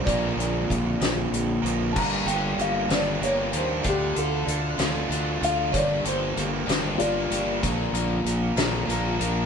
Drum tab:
CC |------|x-----|------|------|
HH |xxxxxx|-xxxxx|xxxxxx|xxxxxx|
SD |---o--|---o--|---o--|---o--|
BD |o-o---|o-----|o-----|o-----|

CC |------|
HH |xxxxxx|
SD |---o--|
BD |o-----|